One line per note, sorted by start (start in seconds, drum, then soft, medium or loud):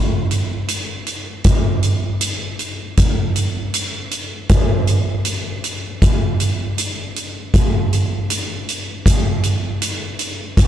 0.31 closed hi-hat soft
0.68 closed hi-hat medium
1.07 closed hi-hat soft
1.44 kick medium
1.44 closed hi-hat medium
1.83 closed hi-hat soft
2.21 closed hi-hat medium
2.59 closed hi-hat soft
2.97 kick medium
2.97 closed hi-hat medium
3.36 closed hi-hat soft
3.74 closed hi-hat medium
4.11 closed hi-hat soft
4.49 kick medium
4.49 closed hi-hat medium
4.87 closed hi-hat soft
5.25 closed hi-hat medium
5.64 closed hi-hat soft
6.02 kick medium
6.02 closed hi-hat medium
6.40 closed hi-hat soft
6.78 closed hi-hat medium
7.16 closed hi-hat soft
7.54 kick medium
7.54 closed hi-hat medium
7.93 closed hi-hat soft
8.30 closed hi-hat medium
8.69 closed hi-hat soft
9.06 kick medium
9.06 closed hi-hat medium
9.43 closed hi-hat soft
9.82 closed hi-hat medium
10.19 closed hi-hat soft
10.57 kick medium
10.57 closed hi-hat medium